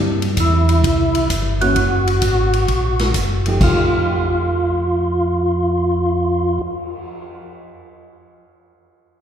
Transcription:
Already playing: G2 G3 A#3 E4
0.22 ride
0.37 E2 E4, kick, hi-hat pedal, ride
0.69 ride
0.84 C2 E4, kick, ride
1.15 ride
1.30 G1, kick, hi-hat pedal, ride
1.61 E3 A#3 C#4 F#4, ride
1.76 F#1, kick, ride
2.07 ride
2.22 G#1, kick, hi-hat pedal, ride
2.53 ride
2.68 A#1, kick, ride
2.99 snare, ride
3.14 F#1, kick, hi-hat pedal, ride
3.46 F3 A3 D#4 G4, ride
3.59 F2 F3 A3 D#4 F4 G4, kick, crash
3.92 cymbal swell

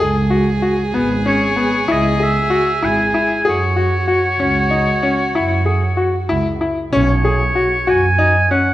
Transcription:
0.00 C#2 G#4
0.30 F#4
0.62 F#4
0.93 G#1 B3
1.26 C#4 C#5
1.56 B3
1.88 C#2 E4 D#5
2.20 G#4 E5
2.50 F#4 E5
2.82 G#1 E4 G#5
3.14 E4
3.44 F#2 F#4 G#4
3.49 C#5
3.76 F#4
4.08 F#4
4.39 C#2 C#4
4.71 D#4
5.03 C#4
5.34 F#2 E4
5.66 G#4
5.97 F#4
6.29 C#2 E4
6.61 E4
6.92 B1 C#4 C#5
7.25 G#4
7.55 F#4
7.87 F#2 F#4 G#5
8.18 D#4
8.51 C#4 F#5

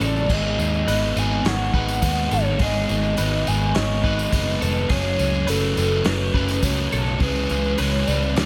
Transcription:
Already playing: C#3 E3 G#3 C#4
0.00 A1 G#3 C#4 A4 D5, tambourine
0.16 tambourine
0.29 G#1 G#2 D#3 G#3 B3 D#4 G#4 D#5, kick, tambourine, crash
0.58 D#2 G#3 B3 D#4, tambourine
0.74 tambourine
0.85 G#1 G#2 D#3 G#3 B4, open hi-hat, tambourine
0.90 B3 D#4
1.16 G#1 G#3 B3 D#4 G#5, tambourine
1.43 G#1 G#2 D#3 G#3 C#5, snare, open hi-hat, tambourine
1.47 F#5
1.73 G#1 G#3 B3 D#4 B4, kick
1.88 tambourine
2.02 D#2 D#3 G#3 B3 D#4, kick, open hi-hat, tambourine
2.29 G#1 D#3 G#3 A4 C#5, tambourine
2.59 G#1 G#2 D#3 G#3 B3 D#4 G#4 D#5, kick, open hi-hat, tambourine
2.89 G#1 G#3 B3 D#4, tambourine
3.03 tambourine
3.16 G#1 G#2 D#3 G#3 B3 D#4 B4, open hi-hat, tambourine
3.47 G#1 G#3 B3 D#4 G#5, tambourine
3.74 G#1 G#2 D#3 G#3 C#5 D#5, snare, open hi-hat, tambourine
4.04 G#3 B3 D#4 B4, kick
4.19 tambourine
4.32 F#1 D#3 G#3 B3 D#4, kick, open hi-hat, tambourine
4.60 F1 D#3 G#3 A4 B4, tambourine
4.76 tambourine
4.89 F#1 F#2 C#3 F#3 A3 C#4 G#4 C#5, kick, open hi-hat, tambourine
5.19 C#2 F#3 A3 C#4, tambourine
5.34 tambourine
5.46 F#1 F#2 C#3 F#3 A3 A4 B4, open hi-hat, tambourine
5.51 C#4
5.77 F#1 F#3 A3 C#4, tambourine
6.04 F#1 F#2 C#3 F#3 B4 C#5, snare, open hi-hat, tambourine
6.34 F#1 F#3 A3 C#4 B4, kick
6.48 snare, tambourine
6.62 C#2 C#3 F#3 A3 C#4 C#5, kick, open hi-hat, tambourine
6.90 B1 C#3 F#3 A4, tambourine
7.06 tambourine
7.20 C#2 C#3 E3 G#3 G#4 B4, kick, open hi-hat
7.25 C#4
7.36 tambourine
7.49 C#2 E3 G#3 C#4, tambourine
7.64 tambourine
7.78 C#2 C#3 E3 G#3 B4 C#5, open hi-hat, tambourine
7.82 C#4
7.94 tambourine
8.07 C#2 E3 G#3 C#4 D5, tambourine
8.23 tambourine
8.36 D2 D3 F#3 A3 D4 D5, snare, open hi-hat, tambourine

